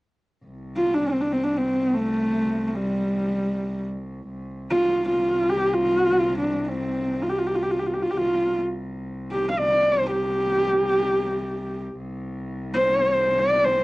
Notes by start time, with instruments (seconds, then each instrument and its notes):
0.45 cello C2
0.77 horsehead fiddle F4
0.94 horsehead fiddle D4
1.08 horsehead fiddle C4
1.21 horsehead fiddle D4
1.32 horsehead fiddle C4
1.43 horsehead fiddle D4
1.57 horsehead fiddle C4
1.94 horsehead fiddle A3
2.67 horsehead fiddle A3
2.75 horsehead fiddle G3
4.29 cello C2
4.70 horsehead fiddle F4
5.09 horsehead fiddle F4
5.50 horsehead fiddle G4
5.73 horsehead fiddle F4
6.39 horsehead fiddle D4
6.64 horsehead fiddle D4
6.69 horsehead fiddle C4
7.22 horsehead fiddle F4
7.29 horsehead fiddle G4
7.38 horsehead fiddle F4
7.47 horsehead fiddle G4
7.55 horsehead fiddle F4
7.63 horsehead fiddle G4
7.71 horsehead fiddle F4
7.79 horsehead fiddle G4
7.86 horsehead fiddle F4
7.94 horsehead fiddle G4
8.02 horsehead fiddle F4
8.11 cello C2, horsehead fiddle G4
8.17 horsehead fiddle F4
9.31 horsehead fiddle G4
9.51 horsehead fiddle F5
9.59 horsehead fiddle D5
9.92 horsehead fiddle C5
10.12 horsehead fiddle G4
11.97 cello C2
12.74 horsehead fiddle C5
13.38 horsehead fiddle D5
13.64 horsehead fiddle C5